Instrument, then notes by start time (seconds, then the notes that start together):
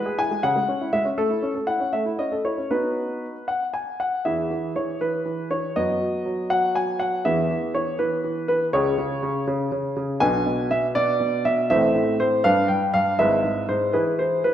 grand piano
Already playing: B4
0.06 G#4
0.19 E4 G#5
0.31 G#3
0.43 C#3 F#5
0.56 G#3
0.68 C#4
0.81 E4
0.93 G#3 E5
1.05 C#4
1.18 A3 A4
1.30 E4
1.42 C#4
1.55 A4
1.67 E4 F#5
1.80 C#4
1.93 A3 E5
2.06 E4
2.19 C#4 D#5
2.32 A4
2.45 E4 C#5
2.58 C#4
2.71 B3 D#4 F#4 B4
3.48 F#5
3.74 G#5
4.00 F#5
4.25 E2 E3 E4 G#4 E5
4.51 E3
4.76 E3 C#5
5.01 E3 B4
5.25 E3
5.51 E3 C#5
5.76 F#2 F#3 B3 F#4 D#5
6.01 F#3
6.26 F#3
6.50 F#3 F#5
6.75 F#3 G#5
7.00 F#3 F#5
7.25 E2 E3 B3 G#4 E5
7.50 E3
7.74 E3 C#5
7.99 E3 B4
8.24 E3
8.48 E3 B4
8.73 C#2 C#3 C#4 G#4 C#5
8.98 C#3
9.23 C#3
9.47 C#3
9.72 C#3
9.96 C#3
10.20 B1 B2 D4 B4 G#5
10.46 B2
10.71 B2 E5
10.95 B2 D5
11.20 B2
11.45 B2 E5
11.70 A1 A2 C4 C5 E5
11.95 A2
12.20 A2 C5
12.44 G2 D4 B4 F5
12.68 G2 G5
12.94 G2 F5
13.19 G#1 G#2 E4 B4 E5
13.44 G#2
13.69 G#2 C5
13.93 E3 E4 G#4 B4
14.19 E3 C5
14.44 E3 B4